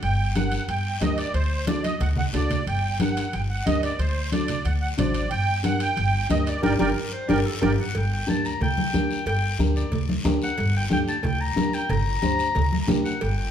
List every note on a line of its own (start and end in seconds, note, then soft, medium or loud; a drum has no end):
0.02 0.55 G1 medium
0.02 0.34 G5 loud
0.02 high conga soft
0.02 high timbale medium
0.02 long guiro medium
0.35 0.59 D4 medium
0.35 0.59 G4 medium
0.35 0.59 A#4 medium
0.35 0.66 F#5 medium
0.35 high conga medium
0.35 high timbale medium
0.35 short guiro medium
0.52 high timbale medium
0.52 short guiro medium
0.68 0.95 G1 medium
0.68 1.00 G5 medium
0.68 high conga soft
0.68 high timbale medium
0.68 long guiro medium
1.01 1.28 D2 medium
1.01 1.24 D4 medium
1.01 1.25 G4 medium
1.01 1.25 A#4 medium
1.01 1.17 D#5 medium
1.01 high conga medium
1.01 high timbale medium
1.01 low timbale medium
1.01 short guiro medium
1.18 1.34 D5 medium
1.18 high timbale medium
1.18 short guiro medium
1.34 1.87 D2 medium
1.34 1.66 C5 medium
1.34 high conga soft
1.34 high timbale medium
1.34 long guiro medium
1.67 1.90 D4 medium
1.67 1.91 F#4 medium
1.67 1.91 A4 medium
1.67 1.83 D5 medium
1.67 high conga medium
1.67 high timbale medium
1.67 short guiro medium
1.83 1.99 D#5 medium
1.83 high conga medium
1.83 high timbale medium
1.83 short guiro medium
2.00 2.28 D2 medium
2.00 2.09 F#5 medium
2.00 low conga medium
2.00 high timbale medium
2.00 long guiro medium
2.16 2.25 F#5 medium
2.16 low conga medium
2.33 2.60 D2 medium
2.33 2.57 D4 medium
2.33 2.57 F#4 medium
2.33 2.57 A4 medium
2.33 2.65 D5 medium
2.33 low conga medium
2.33 high timbale medium
2.33 low timbale medium
2.33 short guiro medium
2.50 low conga medium
2.50 high timbale medium
2.50 short guiro medium
2.67 3.20 G1 medium
2.67 2.98 G5 loud
2.67 high conga soft
2.67 high timbale medium
2.67 long guiro medium
3.00 3.23 D4 medium
3.00 3.24 G4 medium
3.00 3.24 A#4 medium
3.00 3.35 F#5 medium
3.00 high conga medium
3.00 high timbale medium
3.00 short guiro medium
3.17 high timbale medium
3.17 short guiro medium
3.33 3.60 G1 medium
3.33 3.41 G5 medium
3.33 high conga soft
3.33 high timbale medium
3.33 long guiro medium
3.50 3.65 F#5 medium
3.66 3.93 D2 medium
3.66 3.89 D4 medium
3.66 3.89 G4 medium
3.66 3.90 A#4 medium
3.66 3.82 D#5 medium
3.66 high conga medium
3.66 high timbale medium
3.66 short guiro medium
3.82 3.99 D5 medium
3.82 high timbale medium
3.82 short guiro medium
3.99 4.52 D2 medium
3.99 4.30 C5 medium
3.99 high conga soft
3.99 high timbale medium
3.99 long guiro medium
4.32 4.55 D4 medium
4.32 4.56 F#4 medium
4.32 4.56 A4 medium
4.32 4.67 D5 medium
4.32 high conga medium
4.32 high timbale medium
4.32 short guiro medium
4.48 low conga medium
4.48 high timbale medium
4.48 short guiro medium
4.65 4.91 D2 loud
4.65 4.73 F#5 medium
4.65 high conga soft
4.65 high timbale medium
4.65 long guiro medium
4.81 4.89 F#5 medium
4.97 5.24 A1 medium
4.97 5.21 D4 medium
4.97 5.21 F#4 medium
4.97 5.21 C5 medium
4.97 5.30 D5 medium
4.97 high conga medium
4.97 low conga medium
4.97 high timbale medium
4.97 short guiro medium
5.14 high timbale medium
5.14 short guiro medium
5.31 5.84 G1 loud
5.31 5.62 G5 loud
5.31 high conga soft
5.31 high timbale medium
5.31 long guiro medium
5.63 5.87 D4 medium
5.63 5.87 G4 medium
5.63 5.87 A#4 medium
5.63 5.80 F#5 medium
5.63 high conga medium
5.63 high timbale medium
5.63 short guiro medium
5.80 6.27 G5 loud
5.80 high timbale medium
5.80 short guiro medium
5.96 6.23 G1 loud
5.96 high conga soft
5.96 high timbale medium
5.96 long guiro medium
6.29 6.56 D2 medium
6.29 6.53 D4 medium
6.29 6.53 G4 medium
6.29 6.53 A#4 medium
6.29 6.48 D#5 medium
6.29 high conga medium
6.29 high timbale medium
6.29 low timbale medium
6.29 short guiro medium
6.47 6.62 D5 medium
6.47 high timbale medium
6.47 short guiro medium
6.62 6.76 G1 loud
6.62 6.73 D4 medium
6.62 6.73 G4 medium
6.62 6.73 A#4 medium
6.62 6.74 A#4 medium
6.62 6.74 D5 medium
6.62 6.74 G5 loud
6.62 high conga medium
6.62 high timbale medium
6.62 long guiro loud
6.79 6.92 G1 medium
6.79 6.90 D4 medium
6.79 6.90 G4 medium
6.79 6.90 A#4 medium
6.79 7.14 A#4 medium
6.79 6.90 D5 loud
6.79 6.90 G5 loud
6.79 high conga medium
6.79 high timbale medium
6.79 long guiro medium
7.13 7.30 C5 loud
7.28 7.42 G1 medium
7.28 7.39 D4 medium
7.28 7.39 G4 loud
7.28 7.39 A#4 medium
7.28 7.48 A#4 loud
7.28 7.39 D5 medium
7.28 7.39 G5 medium
7.28 high conga medium
7.28 high timbale medium
7.28 long guiro loud
7.46 7.65 A4 medium
7.61 7.74 G1 medium
7.61 7.72 D4 medium
7.61 7.72 G4 medium
7.61 7.79 G4 medium
7.61 7.72 A#4 loud
7.61 7.72 A#4 medium
7.61 7.73 D5 medium
7.61 7.72 G5 medium
7.61 high conga loud
7.61 high timbale loud
7.81 7.99 F#5 medium
7.95 8.21 G1 loud
7.95 8.13 G5 loud
7.95 cowbell loud
7.95 long guiro medium
8.14 8.31 G5 medium
8.26 8.54 D2 medium
8.26 8.50 D4 medium
8.26 8.50 G4 medium
8.26 8.51 A#4 medium
8.26 8.47 A5 loud
8.26 high conga medium
8.26 short guiro medium
8.45 8.61 A#5 medium
8.45 short guiro medium
8.61 8.87 D2 medium
8.61 9.23 G5 loud
8.61 cowbell medium
8.61 low conga medium
8.61 long guiro medium
8.78 high conga medium
8.93 9.07 D2 medium
8.93 9.16 D4 medium
8.93 9.17 G4 medium
8.93 9.17 A#4 medium
8.93 high conga medium
8.93 short guiro medium
9.11 short guiro medium
9.26 9.53 G1 loud
9.26 9.57 G5 loud
9.26 cowbell loud
9.26 long guiro medium
9.59 9.85 D2 medium
9.59 9.82 D4 medium
9.59 9.82 G4 medium
9.59 9.83 A#4 medium
9.59 high conga medium
9.59 short guiro medium
9.76 10.07 D5 medium
9.76 short guiro medium
9.92 10.18 D2 loud
9.92 cowbell medium
9.92 low conga medium
9.92 long guiro medium
10.09 high conga medium
10.24 10.38 D2 loud
10.24 10.48 D4 medium
10.24 10.48 G4 medium
10.24 10.48 A#4 medium
10.24 high conga medium
10.24 low timbale medium
10.24 short guiro medium
10.42 10.74 F#5 loud
10.42 short guiro medium
10.58 10.84 G1 loud
10.58 cowbell medium
10.58 long guiro medium
10.77 10.84 G5 medium
10.90 11.17 D2 medium
10.90 11.13 D4 medium
10.90 11.14 G4 medium
10.90 11.14 A4 medium
10.90 11.00 G5 loud
10.90 high conga medium
10.90 short guiro medium
11.08 11.19 A5 loud
11.08 short guiro medium
11.19 11.26 A5 medium
11.19 cowbell medium
11.24 11.50 D2 loud
11.24 11.43 G5 loud
11.24 low conga medium
11.24 long guiro medium
11.41 11.76 A#5 loud
11.56 11.70 D2 medium
11.56 11.79 D4 medium
11.56 11.79 G4 medium
11.56 11.80 A#4 medium
11.56 high conga medium
11.56 short guiro medium
11.73 11.92 G5 loud
11.73 short guiro medium
11.89 12.16 G1 loud
11.89 12.89 A#5 loud
11.89 cowbell loud
11.89 low conga medium
11.89 long guiro medium
12.22 12.49 D2 medium
12.22 12.45 D4 medium
12.22 12.45 G4 medium
12.22 12.46 C5 medium
12.22 high conga medium
12.22 short guiro medium
12.39 short guiro medium
12.55 12.82 D2 loud
12.55 cowbell medium
12.55 low conga medium
12.55 long guiro medium
12.72 high conga medium
12.87 13.02 D2 medium
12.87 13.11 D4 medium
12.87 13.11 G4 medium
12.87 13.11 A#4 loud
12.87 high conga medium
12.87 low conga medium
12.87 low timbale medium
12.87 short guiro medium
13.05 13.24 F#5 medium
13.05 short guiro medium
13.21 13.48 G1 loud
13.21 13.37 G5 medium
13.21 cowbell medium
13.21 long guiro medium
13.38 13.51 G5 medium